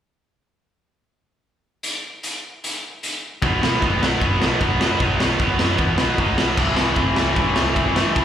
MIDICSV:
0, 0, Header, 1, 4, 480
1, 0, Start_track
1, 0, Tempo, 394997
1, 2230, Time_signature, 4, 2, 24, 8
1, 10023, End_track
2, 0, Start_track
2, 0, Title_t, "Overdriven electric guitar"
2, 0, Program_c, 0, 29
2, 4157, Note_on_c, 0, 47, 105
2, 4164, Note_on_c, 0, 54, 108
2, 4173, Note_on_c, 0, 59, 111
2, 4394, Note_off_c, 0, 47, 0
2, 4397, Note_off_c, 0, 54, 0
2, 4399, Note_on_c, 0, 47, 82
2, 4402, Note_on_c, 0, 54, 88
2, 4404, Note_off_c, 0, 59, 0
2, 4408, Note_on_c, 0, 59, 96
2, 4650, Note_off_c, 0, 47, 0
2, 4650, Note_off_c, 0, 54, 0
2, 4654, Note_off_c, 0, 59, 0
2, 4655, Note_on_c, 0, 47, 80
2, 4655, Note_on_c, 0, 54, 94
2, 4659, Note_on_c, 0, 59, 97
2, 4871, Note_off_c, 0, 47, 0
2, 4876, Note_on_c, 0, 47, 79
2, 4889, Note_off_c, 0, 54, 0
2, 4892, Note_off_c, 0, 59, 0
2, 4894, Note_on_c, 0, 54, 90
2, 4897, Note_on_c, 0, 59, 91
2, 5106, Note_off_c, 0, 47, 0
2, 5115, Note_off_c, 0, 54, 0
2, 5115, Note_off_c, 0, 59, 0
2, 5121, Note_on_c, 0, 47, 102
2, 5129, Note_on_c, 0, 54, 92
2, 5129, Note_on_c, 0, 59, 99
2, 5360, Note_off_c, 0, 47, 0
2, 5365, Note_off_c, 0, 54, 0
2, 5365, Note_off_c, 0, 59, 0
2, 5374, Note_on_c, 0, 47, 82
2, 5379, Note_on_c, 0, 59, 87
2, 5380, Note_on_c, 0, 54, 82
2, 5602, Note_off_c, 0, 47, 0
2, 5602, Note_off_c, 0, 54, 0
2, 5611, Note_off_c, 0, 59, 0
2, 5617, Note_on_c, 0, 47, 85
2, 5617, Note_on_c, 0, 54, 91
2, 5625, Note_on_c, 0, 59, 100
2, 5839, Note_off_c, 0, 47, 0
2, 5852, Note_off_c, 0, 54, 0
2, 5853, Note_on_c, 0, 47, 88
2, 5855, Note_off_c, 0, 59, 0
2, 5866, Note_on_c, 0, 54, 82
2, 5870, Note_on_c, 0, 59, 86
2, 6066, Note_off_c, 0, 47, 0
2, 6074, Note_off_c, 0, 54, 0
2, 6080, Note_on_c, 0, 47, 94
2, 6083, Note_off_c, 0, 59, 0
2, 6089, Note_on_c, 0, 54, 103
2, 6097, Note_on_c, 0, 59, 106
2, 6323, Note_off_c, 0, 54, 0
2, 6326, Note_off_c, 0, 47, 0
2, 6336, Note_off_c, 0, 59, 0
2, 6338, Note_on_c, 0, 54, 88
2, 6340, Note_on_c, 0, 47, 78
2, 6351, Note_on_c, 0, 59, 92
2, 6546, Note_off_c, 0, 47, 0
2, 6552, Note_off_c, 0, 54, 0
2, 6561, Note_on_c, 0, 47, 82
2, 6562, Note_off_c, 0, 59, 0
2, 6566, Note_on_c, 0, 54, 95
2, 6576, Note_on_c, 0, 59, 105
2, 6788, Note_off_c, 0, 47, 0
2, 6792, Note_off_c, 0, 59, 0
2, 6796, Note_off_c, 0, 54, 0
2, 6803, Note_on_c, 0, 47, 80
2, 6806, Note_on_c, 0, 59, 96
2, 6810, Note_on_c, 0, 54, 94
2, 7031, Note_off_c, 0, 47, 0
2, 7041, Note_off_c, 0, 54, 0
2, 7045, Note_on_c, 0, 47, 96
2, 7046, Note_off_c, 0, 59, 0
2, 7056, Note_on_c, 0, 54, 101
2, 7060, Note_on_c, 0, 59, 110
2, 7279, Note_off_c, 0, 47, 0
2, 7293, Note_on_c, 0, 47, 88
2, 7294, Note_off_c, 0, 54, 0
2, 7296, Note_off_c, 0, 59, 0
2, 7309, Note_on_c, 0, 54, 82
2, 7310, Note_on_c, 0, 59, 89
2, 7504, Note_off_c, 0, 47, 0
2, 7512, Note_off_c, 0, 54, 0
2, 7518, Note_on_c, 0, 47, 91
2, 7526, Note_off_c, 0, 59, 0
2, 7526, Note_on_c, 0, 54, 87
2, 7540, Note_on_c, 0, 59, 91
2, 7752, Note_off_c, 0, 47, 0
2, 7761, Note_off_c, 0, 54, 0
2, 7766, Note_on_c, 0, 47, 80
2, 7768, Note_off_c, 0, 59, 0
2, 7776, Note_on_c, 0, 54, 88
2, 7782, Note_on_c, 0, 59, 99
2, 7984, Note_off_c, 0, 47, 0
2, 7988, Note_off_c, 0, 54, 0
2, 7992, Note_off_c, 0, 59, 0
2, 8011, Note_on_c, 0, 45, 96
2, 8017, Note_on_c, 0, 52, 106
2, 8029, Note_on_c, 0, 57, 110
2, 8237, Note_off_c, 0, 45, 0
2, 8251, Note_on_c, 0, 45, 82
2, 8260, Note_off_c, 0, 52, 0
2, 8263, Note_off_c, 0, 57, 0
2, 8265, Note_on_c, 0, 52, 91
2, 8268, Note_on_c, 0, 57, 97
2, 8457, Note_off_c, 0, 45, 0
2, 8471, Note_on_c, 0, 45, 89
2, 8482, Note_off_c, 0, 57, 0
2, 8484, Note_off_c, 0, 52, 0
2, 8487, Note_on_c, 0, 57, 106
2, 8489, Note_on_c, 0, 52, 92
2, 8705, Note_off_c, 0, 45, 0
2, 8716, Note_off_c, 0, 52, 0
2, 8720, Note_on_c, 0, 45, 85
2, 8721, Note_on_c, 0, 52, 99
2, 8733, Note_off_c, 0, 57, 0
2, 8738, Note_on_c, 0, 57, 100
2, 8940, Note_off_c, 0, 45, 0
2, 8954, Note_on_c, 0, 45, 97
2, 8955, Note_off_c, 0, 52, 0
2, 8956, Note_off_c, 0, 57, 0
2, 8960, Note_on_c, 0, 52, 108
2, 8971, Note_on_c, 0, 57, 99
2, 9171, Note_off_c, 0, 45, 0
2, 9174, Note_off_c, 0, 57, 0
2, 9184, Note_off_c, 0, 52, 0
2, 9185, Note_on_c, 0, 45, 82
2, 9188, Note_on_c, 0, 52, 93
2, 9189, Note_on_c, 0, 57, 98
2, 9401, Note_off_c, 0, 45, 0
2, 9412, Note_off_c, 0, 57, 0
2, 9415, Note_on_c, 0, 45, 94
2, 9422, Note_off_c, 0, 52, 0
2, 9427, Note_on_c, 0, 52, 89
2, 9427, Note_on_c, 0, 57, 94
2, 9647, Note_off_c, 0, 45, 0
2, 9662, Note_on_c, 0, 45, 85
2, 9671, Note_off_c, 0, 57, 0
2, 9673, Note_off_c, 0, 52, 0
2, 9678, Note_on_c, 0, 52, 87
2, 9685, Note_on_c, 0, 57, 96
2, 9906, Note_off_c, 0, 45, 0
2, 9917, Note_off_c, 0, 57, 0
2, 9920, Note_on_c, 0, 45, 95
2, 9928, Note_off_c, 0, 52, 0
2, 9931, Note_on_c, 0, 57, 112
2, 9932, Note_on_c, 0, 52, 100
2, 10023, Note_off_c, 0, 45, 0
2, 10023, Note_off_c, 0, 52, 0
2, 10023, Note_off_c, 0, 57, 0
2, 10023, End_track
3, 0, Start_track
3, 0, Title_t, "Picked electric bass"
3, 0, Program_c, 1, 34
3, 4168, Note_on_c, 1, 35, 86
3, 4336, Note_off_c, 1, 35, 0
3, 4390, Note_on_c, 1, 35, 85
3, 4565, Note_off_c, 1, 35, 0
3, 4651, Note_on_c, 1, 47, 92
3, 4818, Note_off_c, 1, 47, 0
3, 4861, Note_on_c, 1, 35, 86
3, 5039, Note_off_c, 1, 35, 0
3, 5119, Note_on_c, 1, 42, 91
3, 5290, Note_off_c, 1, 42, 0
3, 5355, Note_on_c, 1, 35, 92
3, 5528, Note_off_c, 1, 35, 0
3, 5603, Note_on_c, 1, 35, 88
3, 5773, Note_off_c, 1, 35, 0
3, 5848, Note_on_c, 1, 42, 89
3, 6016, Note_off_c, 1, 42, 0
3, 6079, Note_on_c, 1, 35, 83
3, 6250, Note_off_c, 1, 35, 0
3, 6316, Note_on_c, 1, 35, 87
3, 6489, Note_off_c, 1, 35, 0
3, 6565, Note_on_c, 1, 35, 89
3, 6734, Note_off_c, 1, 35, 0
3, 6801, Note_on_c, 1, 42, 86
3, 6971, Note_off_c, 1, 42, 0
3, 7033, Note_on_c, 1, 40, 90
3, 7206, Note_off_c, 1, 40, 0
3, 7276, Note_on_c, 1, 35, 98
3, 7449, Note_off_c, 1, 35, 0
3, 7519, Note_on_c, 1, 35, 84
3, 7988, Note_off_c, 1, 35, 0
3, 7988, Note_on_c, 1, 36, 86
3, 8163, Note_off_c, 1, 36, 0
3, 8244, Note_on_c, 1, 36, 92
3, 8413, Note_off_c, 1, 36, 0
3, 8461, Note_on_c, 1, 48, 91
3, 8639, Note_off_c, 1, 48, 0
3, 8729, Note_on_c, 1, 36, 87
3, 8897, Note_off_c, 1, 36, 0
3, 8958, Note_on_c, 1, 43, 92
3, 9130, Note_off_c, 1, 43, 0
3, 9195, Note_on_c, 1, 36, 91
3, 9368, Note_off_c, 1, 36, 0
3, 9438, Note_on_c, 1, 36, 83
3, 9610, Note_off_c, 1, 36, 0
3, 9666, Note_on_c, 1, 43, 87
3, 9842, Note_off_c, 1, 43, 0
3, 9925, Note_on_c, 1, 36, 92
3, 10023, Note_off_c, 1, 36, 0
3, 10023, End_track
4, 0, Start_track
4, 0, Title_t, "Drums"
4, 2227, Note_on_c, 9, 42, 63
4, 2348, Note_off_c, 9, 42, 0
4, 2713, Note_on_c, 9, 42, 58
4, 2835, Note_off_c, 9, 42, 0
4, 3206, Note_on_c, 9, 42, 61
4, 3327, Note_off_c, 9, 42, 0
4, 3683, Note_on_c, 9, 42, 59
4, 3804, Note_off_c, 9, 42, 0
4, 4160, Note_on_c, 9, 36, 123
4, 4164, Note_on_c, 9, 51, 74
4, 4282, Note_off_c, 9, 36, 0
4, 4285, Note_off_c, 9, 51, 0
4, 4413, Note_on_c, 9, 38, 113
4, 4535, Note_off_c, 9, 38, 0
4, 4645, Note_on_c, 9, 36, 108
4, 4657, Note_on_c, 9, 51, 74
4, 4767, Note_off_c, 9, 36, 0
4, 4779, Note_off_c, 9, 51, 0
4, 4895, Note_on_c, 9, 38, 111
4, 5017, Note_off_c, 9, 38, 0
4, 5122, Note_on_c, 9, 36, 116
4, 5128, Note_on_c, 9, 51, 73
4, 5243, Note_off_c, 9, 36, 0
4, 5249, Note_off_c, 9, 51, 0
4, 5366, Note_on_c, 9, 38, 112
4, 5488, Note_off_c, 9, 38, 0
4, 5600, Note_on_c, 9, 36, 113
4, 5602, Note_on_c, 9, 51, 75
4, 5722, Note_off_c, 9, 36, 0
4, 5723, Note_off_c, 9, 51, 0
4, 5843, Note_on_c, 9, 38, 117
4, 5965, Note_off_c, 9, 38, 0
4, 6075, Note_on_c, 9, 51, 78
4, 6079, Note_on_c, 9, 36, 119
4, 6197, Note_off_c, 9, 51, 0
4, 6201, Note_off_c, 9, 36, 0
4, 6322, Note_on_c, 9, 38, 119
4, 6444, Note_off_c, 9, 38, 0
4, 6555, Note_on_c, 9, 51, 72
4, 6559, Note_on_c, 9, 36, 115
4, 6677, Note_off_c, 9, 51, 0
4, 6681, Note_off_c, 9, 36, 0
4, 6794, Note_on_c, 9, 38, 113
4, 6916, Note_off_c, 9, 38, 0
4, 7025, Note_on_c, 9, 51, 71
4, 7035, Note_on_c, 9, 36, 114
4, 7146, Note_off_c, 9, 51, 0
4, 7156, Note_off_c, 9, 36, 0
4, 7265, Note_on_c, 9, 38, 115
4, 7387, Note_off_c, 9, 38, 0
4, 7510, Note_on_c, 9, 51, 68
4, 7514, Note_on_c, 9, 36, 109
4, 7632, Note_off_c, 9, 51, 0
4, 7636, Note_off_c, 9, 36, 0
4, 7752, Note_on_c, 9, 38, 113
4, 7874, Note_off_c, 9, 38, 0
4, 7989, Note_on_c, 9, 49, 102
4, 7990, Note_on_c, 9, 36, 120
4, 8111, Note_off_c, 9, 36, 0
4, 8111, Note_off_c, 9, 49, 0
4, 8221, Note_on_c, 9, 38, 120
4, 8343, Note_off_c, 9, 38, 0
4, 8456, Note_on_c, 9, 51, 73
4, 8463, Note_on_c, 9, 36, 111
4, 8577, Note_off_c, 9, 51, 0
4, 8585, Note_off_c, 9, 36, 0
4, 8706, Note_on_c, 9, 38, 112
4, 8827, Note_off_c, 9, 38, 0
4, 8945, Note_on_c, 9, 51, 76
4, 8948, Note_on_c, 9, 36, 110
4, 9067, Note_off_c, 9, 51, 0
4, 9070, Note_off_c, 9, 36, 0
4, 9185, Note_on_c, 9, 38, 111
4, 9306, Note_off_c, 9, 38, 0
4, 9432, Note_on_c, 9, 36, 115
4, 9436, Note_on_c, 9, 51, 81
4, 9554, Note_off_c, 9, 36, 0
4, 9558, Note_off_c, 9, 51, 0
4, 9674, Note_on_c, 9, 38, 113
4, 9796, Note_off_c, 9, 38, 0
4, 9917, Note_on_c, 9, 36, 117
4, 9917, Note_on_c, 9, 51, 85
4, 10023, Note_off_c, 9, 36, 0
4, 10023, Note_off_c, 9, 51, 0
4, 10023, End_track
0, 0, End_of_file